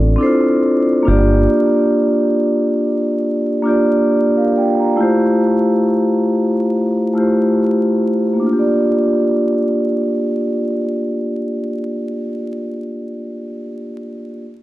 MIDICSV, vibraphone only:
0, 0, Header, 1, 2, 480
1, 0, Start_track
1, 0, Tempo, 869565
1, 825, Time_signature, 4, 2, 24, 8
1, 8074, End_track
2, 0, Start_track
2, 0, Title_t, "Vibraphone"
2, 0, Program_c, 0, 11
2, 0, Control_c, 0, 64, 127
2, 0, Note_on_c, 0, 60, 77
2, 0, Note_on_c, 0, 62, 75
2, 0, Note_on_c, 0, 65, 68
2, 0, Note_on_c, 0, 69, 75
2, 0, Note_on_c, 0, 74, 84
2, 89, Note_off_c, 0, 60, 0
2, 89, Note_on_c, 0, 60, 73
2, 100, Note_off_c, 0, 62, 0
2, 100, Note_on_c, 0, 62, 74
2, 108, Note_on_c, 0, 64, 60
2, 116, Note_off_c, 0, 69, 0
2, 116, Note_on_c, 0, 69, 70
2, 125, Note_on_c, 0, 72, 91
2, 144, Note_off_c, 0, 65, 0
2, 144, Note_on_c, 0, 65, 69
2, 147, Note_off_c, 0, 64, 0
2, 549, Note_off_c, 0, 60, 0
2, 555, Note_off_c, 0, 62, 0
2, 563, Note_off_c, 0, 69, 0
2, 567, Note_off_c, 0, 72, 0
2, 568, Note_on_c, 0, 58, 83
2, 577, Note_off_c, 0, 65, 0
2, 580, Note_on_c, 0, 62, 81
2, 588, Note_on_c, 0, 65, 69
2, 592, Control_c, 0, 64, 0
2, 596, Note_on_c, 0, 67, 78
2, 597, Note_off_c, 0, 74, 0
2, 605, Note_on_c, 0, 74, 88
2, 703, Control_c, 0, 64, 127
2, 1351, Note_off_c, 0, 58, 0
2, 1357, Note_off_c, 0, 62, 0
2, 1361, Note_off_c, 0, 65, 0
2, 1365, Note_off_c, 0, 67, 0
2, 1369, Note_off_c, 0, 74, 0
2, 2002, Note_on_c, 0, 58, 75
2, 2009, Note_on_c, 0, 62, 65
2, 2018, Note_on_c, 0, 65, 75
2, 2028, Note_on_c, 0, 67, 69
2, 2038, Note_on_c, 0, 74, 81
2, 2263, Note_off_c, 0, 74, 0
2, 2266, Note_off_c, 0, 67, 0
2, 2270, Note_on_c, 0, 74, 63
2, 2273, Note_on_c, 0, 67, 49
2, 2396, Note_off_c, 0, 74, 0
2, 2398, Note_off_c, 0, 67, 0
2, 2413, Note_on_c, 0, 77, 62
2, 2415, Note_on_c, 0, 70, 58
2, 2466, Note_off_c, 0, 58, 0
2, 2470, Note_off_c, 0, 62, 0
2, 2474, Note_off_c, 0, 65, 0
2, 2506, Note_off_c, 0, 77, 0
2, 2507, Note_off_c, 0, 70, 0
2, 2523, Note_on_c, 0, 79, 67
2, 2524, Note_on_c, 0, 74, 56
2, 2644, Note_off_c, 0, 74, 0
2, 2644, Note_off_c, 0, 79, 0
2, 2647, Note_on_c, 0, 82, 58
2, 2650, Note_on_c, 0, 77, 49
2, 2737, Note_on_c, 0, 57, 80
2, 2744, Note_on_c, 0, 64, 76
2, 2753, Control_c, 0, 64, 0
2, 2757, Note_on_c, 0, 65, 74
2, 2764, Note_on_c, 0, 67, 69
2, 2772, Note_on_c, 0, 72, 78
2, 2845, Control_c, 0, 64, 127
2, 2872, Note_off_c, 0, 82, 0
2, 2874, Note_off_c, 0, 77, 0
2, 3354, Note_off_c, 0, 57, 0
2, 3358, Note_off_c, 0, 64, 0
2, 3364, Note_off_c, 0, 65, 0
2, 3368, Note_off_c, 0, 67, 0
2, 3372, Note_off_c, 0, 72, 0
2, 3939, Note_on_c, 0, 57, 72
2, 3949, Note_on_c, 0, 64, 61
2, 3956, Note_on_c, 0, 65, 60
2, 3966, Note_on_c, 0, 67, 67
2, 3974, Note_on_c, 0, 72, 69
2, 4395, Note_off_c, 0, 57, 0
2, 4399, Note_off_c, 0, 64, 0
2, 4403, Note_off_c, 0, 65, 0
2, 4408, Note_off_c, 0, 67, 0
2, 4412, Note_off_c, 0, 72, 0
2, 4601, Note_on_c, 0, 58, 72
2, 4636, Note_on_c, 0, 62, 66
2, 4671, Control_c, 0, 64, 0
2, 4672, Note_on_c, 0, 65, 68
2, 4707, Note_on_c, 0, 67, 68
2, 4742, Note_on_c, 0, 74, 80
2, 4756, Control_c, 0, 64, 127
2, 6710, Note_off_c, 0, 58, 0
2, 6745, Note_off_c, 0, 62, 0
2, 6781, Note_off_c, 0, 65, 0
2, 6816, Note_off_c, 0, 67, 0
2, 6851, Note_off_c, 0, 74, 0
2, 7972, Control_c, 0, 64, 0
2, 8074, End_track
0, 0, End_of_file